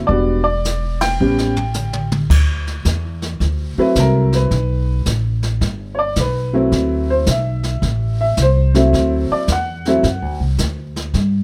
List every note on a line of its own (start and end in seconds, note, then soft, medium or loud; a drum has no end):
0.07 1.16 E1 medium
0.07 0.42 G3 medium
0.07 0.43 B3 medium
0.07 0.43 D4 medium
0.07 0.43 F#4 medium
0.07 0.42 D5 medium
0.07 brush sweep medium
0.07 kick soft
0.44 0.97 D5 medium
0.65 snare medium
0.65 hi-hat pedal medium
1.01 2.08 G5 loud
1.01 snare medium
1.01 ride medium
1.20 2.27 A1 medium
1.20 1.54 G3 medium
1.20 1.54 B3 medium
1.20 1.54 C#4 soft
1.20 1.54 G4 medium
1.38 snare medium
1.56 floor tom medium
1.74 hi-hat pedal medium
1.74 mid tom medium
1.93 mid tom medium
2.12 mid tom medium
2.30 2.84 D2 medium
2.30 brush sweep soft
2.30 kick medium
2.30 snare soft
2.30 crash medium
2.67 snare soft
2.85 3.39 E2 medium
2.85 kick soft
2.85 snare medium
2.85 hi-hat pedal medium
3.22 snare soft
3.40 3.75 D2 medium
3.40 brush sweep soft
3.40 kick soft
3.40 snare soft
3.77 4.48 F#3 medium
3.77 4.48 A3 medium
3.77 4.48 C4 medium
3.77 4.49 E4 medium
3.77 3.97 B4 medium
3.77 muted upright bass stroke soft
3.95 4.50 C2 medium
3.95 kick soft
3.95 snare medium
3.95 hi-hat pedal medium
4.00 4.34 A#4 medium
4.33 5.04 B4 medium
4.33 snare soft
4.51 5.05 B1 medium
4.51 brush sweep soft
4.51 kick soft
4.51 snare soft
5.06 5.60 A1 medium
5.06 kick soft
5.06 snare medium
5.06 hi-hat pedal medium
5.43 snare soft
5.61 6.15 G1 medium
5.61 brush sweep soft
5.61 kick soft
5.61 snare soft
5.95 5.97 C#5 medium
5.99 6.17 D5 medium
6.16 6.71 B1 medium
6.16 kick soft
6.16 snare medium
6.16 hi-hat pedal soft
6.20 7.07 B4 medium
6.53 7.24 F#3 medium
6.53 7.24 A3 medium
6.53 7.24 C4 medium
6.53 7.25 E4 medium
6.72 7.26 D2 medium
6.72 brush sweep soft
6.72 kick soft
6.72 snare soft
7.10 7.28 C5 medium
7.26 7.81 B1 medium
7.26 kick soft
7.26 snare medium
7.26 hi-hat pedal medium
7.31 8.17 E5 medium
7.63 snare soft
7.82 8.36 A1 medium
7.82 brush sweep soft
7.82 kick soft
7.82 snare soft
8.21 8.38 E5 medium
8.37 8.91 C2 medium
8.37 kick soft
8.37 snare medium
8.37 hi-hat pedal medium
8.42 9.28 C5 medium
8.74 9.45 F#3 medium
8.74 9.45 A3 medium
8.74 9.45 C4 medium
8.74 9.46 E4 medium
8.74 snare soft
8.93 9.28 D2 medium
8.93 brush sweep medium
8.93 kick soft
8.93 snare soft
9.30 9.49 D5 medium
9.30 muted upright bass stroke soft
9.48 10.02 E2 medium
9.48 kick soft
9.48 snare medium
9.48 hi-hat pedal soft
9.52 10.39 F#5 medium
9.85 10.03 F#3 medium
9.85 10.03 A3 medium
9.85 10.03 C4 medium
9.85 10.03 E4 medium
9.85 snare soft
10.03 10.22 F#2 medium
10.03 brush sweep soft
10.03 kick soft
10.03 snare soft
10.22 10.40 D2 medium
10.40 10.58 C2 medium
10.58 11.12 D2 medium
10.58 kick soft
10.58 snare medium
10.58 hi-hat pedal medium
10.96 snare soft
11.14 11.44 G2 medium
11.14 brush sweep soft
11.14 kick soft
11.14 snare soft